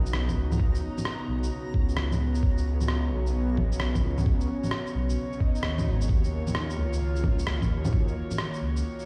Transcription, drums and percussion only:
0.06 shaker soft
0.13 cross-stick loud
0.29 kick medium
0.29 low bongo soft
0.29 shaker soft
0.52 low bongo medium
0.52 shaker medium
0.60 kick loud
0.75 shaker soft
0.98 low bongo soft
0.98 shaker medium
1.05 cross-stick loud
1.43 shaker medium
1.74 kick loud
1.89 shaker medium
1.97 cross-stick loud
2.12 low bongo soft
2.12 shaker soft
2.35 shaker medium
2.43 kick loud
2.58 shaker soft
2.81 low bongo soft
2.81 shaker soft
2.88 cross-stick loud
3.27 shaker medium
3.57 kick loud
3.57 low bongo medium
3.72 shaker medium
3.80 cross-stick loud
3.95 kick medium
3.95 low bongo soft
3.95 shaker soft
4.18 low bongo medium
4.18 shaker medium
4.26 kick loud
4.41 shaker soft
4.64 low bongo soft
4.64 shaker medium
4.71 cross-stick loud
4.87 shaker soft
5.10 shaker medium
5.33 shaker soft
5.40 kick loud
5.55 shaker medium
5.63 cross-stick loud
5.78 low bongo medium
5.78 shaker soft
6.01 shaker medium
6.09 kick loud
6.24 shaker soft
6.47 low bongo soft
6.47 shaker medium
6.55 cross-stick loud
6.70 shaker soft
6.93 shaker medium
7.16 shaker soft
7.24 kick loud
7.24 low bongo medium
7.39 shaker medium
7.47 cross-stick loud
7.62 kick medium
7.62 low bongo medium
7.62 shaker soft
7.85 low bongo medium
7.85 shaker medium
7.93 kick loud
8.08 shaker soft
8.31 low bongo soft
8.31 shaker medium
8.38 cross-stick loud
8.54 shaker soft
8.77 shaker medium
8.99 shaker soft

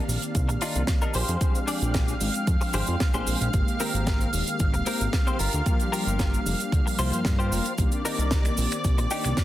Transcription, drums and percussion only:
0.09 open hi-hat medium
0.09 cabasa medium
0.22 closed hi-hat medium
0.22 cabasa soft
0.35 kick loud
0.35 closed hi-hat medium
0.35 cabasa medium
0.49 closed hi-hat soft
0.49 cabasa soft
0.61 open hi-hat loud
0.61 cabasa medium
0.75 closed hi-hat medium
0.75 cabasa medium
0.87 kick loud
0.87 snare loud
0.87 closed hi-hat medium
0.87 cabasa medium
1.02 cabasa soft
1.14 open hi-hat loud
1.14 cabasa medium
1.28 closed hi-hat medium
1.28 cabasa medium
1.41 kick loud
1.41 closed hi-hat medium
1.41 cabasa medium
1.55 closed hi-hat medium
1.55 cabasa soft
1.68 open hi-hat medium
1.68 cabasa medium
1.81 closed hi-hat medium
1.81 cabasa soft
1.94 kick loud
1.94 snare loud
1.94 closed hi-hat medium
1.94 cabasa medium
2.08 closed hi-hat medium
2.08 cabasa soft
2.21 open hi-hat loud
2.21 cabasa medium
2.34 closed hi-hat medium
2.34 cabasa soft
2.47 kick loud
2.47 closed hi-hat medium
2.47 cabasa medium
2.61 open hi-hat medium
2.61 cabasa soft
2.73 open hi-hat loud
2.73 cabasa medium
2.87 closed hi-hat medium
2.87 cabasa soft
3.00 kick loud
3.00 snare loud
3.00 closed hi-hat medium
3.00 cabasa soft
3.14 cabasa soft
3.27 open hi-hat loud
3.27 cabasa medium
3.41 closed hi-hat medium
3.41 cabasa soft
3.53 kick loud
3.53 closed hi-hat medium
3.53 cabasa medium
3.68 closed hi-hat medium
3.68 cabasa soft
3.80 open hi-hat loud
3.80 cabasa medium
3.95 closed hi-hat medium
3.95 cabasa soft
4.07 kick loud
4.07 snare loud
4.07 closed hi-hat medium
4.07 cabasa medium
4.21 closed hi-hat soft
4.21 cabasa soft
4.33 open hi-hat loud
4.33 cabasa medium
4.47 closed hi-hat medium
4.47 cabasa medium
4.59 kick loud
4.59 closed hi-hat medium
4.59 cabasa medium
4.74 closed hi-hat soft
4.74 cabasa soft
4.86 open hi-hat loud
4.86 cabasa medium
5.01 closed hi-hat medium
5.01 cabasa soft
5.13 kick loud
5.13 snare loud
5.13 closed hi-hat medium
5.13 cabasa soft
5.27 cabasa soft
5.39 open hi-hat loud
5.39 cabasa medium
5.53 closed hi-hat medium
5.53 cabasa soft
5.66 kick loud
5.66 closed hi-hat medium
5.66 cabasa medium
5.80 closed hi-hat medium
5.80 cabasa soft
5.93 open hi-hat loud
5.93 cabasa medium
6.07 closed hi-hat medium
6.07 cabasa medium
6.19 kick loud
6.19 snare loud
6.19 closed hi-hat medium
6.19 cabasa medium
6.34 closed hi-hat soft
6.34 cabasa soft
6.46 open hi-hat medium
6.46 cabasa medium
6.60 closed hi-hat medium
6.60 cabasa soft
6.72 kick loud
6.72 closed hi-hat medium
6.72 cabasa medium
6.87 open hi-hat medium
6.87 cabasa soft
6.99 open hi-hat loud
6.99 cabasa medium
7.13 closed hi-hat medium
7.13 cabasa soft
7.25 kick loud
7.25 snare loud
7.25 closed hi-hat medium
7.25 cabasa medium
7.40 cabasa soft
7.52 open hi-hat loud
7.52 cabasa medium
7.66 closed hi-hat medium
7.66 cabasa soft
7.78 kick loud
7.78 closed hi-hat medium
7.78 cabasa medium
7.92 closed hi-hat medium
7.92 cabasa soft
8.05 open hi-hat loud
8.05 cabasa medium
8.19 closed hi-hat medium
8.19 cabasa medium
8.31 kick loud
8.31 snare loud
8.31 closed hi-hat medium
8.31 cabasa medium
8.45 finger snap medium
8.45 closed hi-hat soft
8.45 cabasa soft
8.57 open hi-hat loud
8.57 cabasa medium
8.72 finger snap medium
8.72 closed hi-hat medium
8.72 cabasa soft
8.84 kick loud
8.84 closed hi-hat medium
8.84 cabasa medium
8.98 closed hi-hat soft
8.98 cabasa medium
9.11 open hi-hat loud
9.11 cabasa medium
9.24 finger snap medium
9.24 closed hi-hat medium
9.24 cabasa soft
9.37 kick loud
9.37 snare loud
9.37 closed hi-hat medium
9.37 cabasa medium

